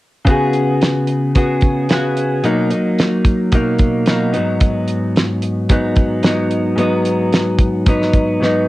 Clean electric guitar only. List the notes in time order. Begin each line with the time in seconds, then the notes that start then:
0.25 C#3 B3 F#4
0.30 G#4
1.35 C#3 B3 F#4 G#4
1.90 C#3 B3 F#4 G#4
2.44 B2 F#3 A#3 D#4
2.71 F#3 A#3 D#4
3.52 B2 F#3 A#3 D#4
4.07 B2 F#3 A#3 D#4
4.33 F#3 B3 D#4
4.37 G#2
5.69 G#2 F#3 B3 D#4
6.23 G#2 F#3 B3 D#4
6.76 G#2 F#3 B3
6.81 D#4
7.86 G#2 F#3 B3 D#4
8.40 G#2 F#3 B3 D#4